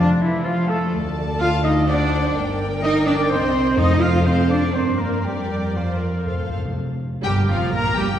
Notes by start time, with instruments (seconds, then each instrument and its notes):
Already playing: timpani F2, flute D5
0.00 french horn section D3, clarinet D4
0.21 cello section E3, french horn section E3, clarinet E4, trumpet section E4, flute E5
0.44 cello section F3, french horn section F3, clarinet F4, trumpet section F4, flute F5
0.68 cello section A3, french horn section A3, clarinet A4, trumpet section A4, flute A5
0.91 double bass section D2, viola section A4, violin section D5 A5
1.40 cello section F4, french horn section F4, trumpet section F5, clarinet F5, flute F6
1.63 cello section D#4, french horn section D#4, trumpet section D#5, clarinet D#5, flute D#6
1.87 french horn section D4, cello section D4, viola section C5, trumpet section D5, clarinet D5, violin section F#5, flute D6
2.35 double bass section G1, viola section A#4, violin section G5
2.81 cello section D#4, french horn section D#4, clarinet D#5, trumpet section D#5, flute D#6
3.06 cello section D4, french horn section D4, clarinet D5, trumpet section D5, flute D6
3.29 double bass section C2, cello section C4, french horn section C4, clarinet C5, trumpet section C5, violin section D#5, flute C6
3.77 double bass section F2, timpani F2, cello section D#4, french horn section D#4, viola section A4, violin section C5 F5, clarinet D#5, trumpet section D#5, flute D#6
4.00 french horn section F4, cello section F4, clarinet F5, trumpet section F5, flute F6
4.25 french horn section C4, cello section C4, trumpet section C5, clarinet C5, flute C6
4.49 french horn section D4, cello section D4, clarinet D5, trumpet section D5, flute D6
4.73 double bass section G2, french horn section C4, cello section C4, violin section A#4 D5, viola section A#4, clarinet C5, trumpet section C5, flute C6
4.98 cello section A#3, french horn section A#3, clarinet A#4, trumpet section A#4, flute A#5
5.24 double bass section F2, cello section G3, french horn section G3, clarinet G4, trumpet section G4, flute G5
5.75 cello section F3, french horn section F3, clarinet F4, trumpet section F4, viola section C5, flute F5
6.00 viola section A#4
6.26 timpani F2, viola section A4, violin section C5 F5
6.34 timpani F2
6.43 timpani F2
6.50 timpani F2
6.57 timpani F2
6.65 timpani F2
7.24 double bass section G1, cello section G2, viola section G3, french horn section G3, clarinet G4, trumpet section G4, violin section G4 G5, oboe A#4
7.48 double bass section F1, cello section F2, viola section F3, french horn section F3, trumpet section F4, clarinet F4, violin section F4 F5
7.70 double bass section A#1, cello section A#2, french horn section A#3, viola section A#3, trumpet section A#4, clarinet A#4, violin section A#4 A#5
7.96 double bass section G1, cello section G2, french horn section G3, viola section G3, clarinet G4, trumpet section G4, violin section G4 G5